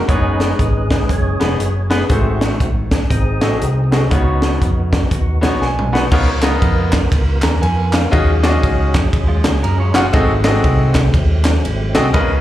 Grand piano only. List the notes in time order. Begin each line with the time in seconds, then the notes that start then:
0.08 B3 C#4 G#4 C#5
0.14 D#4
1.40 B3 D#4 G#4 B4
1.90 B3 D#4 G#4 B4
2.09 G#2 A3 F#4 G#4 C5
3.41 A3 F#4 G#4 D#5
3.91 A3 F#4 G#4 D#5
4.10 C#3 B3 D#4 F4 C#5
4.17 F#4
5.41 B3 D#4 F#4 C#5
5.61 G#5
5.93 B3 D#4 F#4 B4 F#5
6.11 C#3 B3 D#4 F4 A#4 C#5
6.43 B3 D#4 F4 A#4 D#5
7.43 A#5
7.62 G#5
7.93 F5
8.11 D#3 C#4 F4 F#4 G#4 D#5
8.43 C#4 F4 F#4 G#4 D5
8.50 D#5
9.94 C#4 F4 F#4 G#4 F#5
10.12 G#2 C4 F#4 G#4 A4 D#5
10.44 B3 F#4 G#4 A4 D#5
10.50 C4
11.94 C4 F#4 G#4 A4 D#5
12.13 C#3 C#4 F4 A#4 B4 D#5